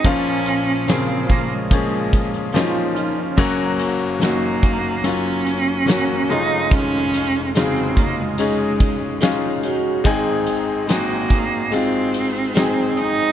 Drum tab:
HH |x-x-x-x-x-xxx-x-|x-x-x-x-x-x-x-x-|x-x-xxx-x-x-x-x-|x-x-x-x-x-xxx-x-|
SD |----o-------o---|----o-------o---|----o-------o---|----o-------o---|
BD |o-----o-o-o-----|o-----o---------|o-----o---o-----|o-----o---------|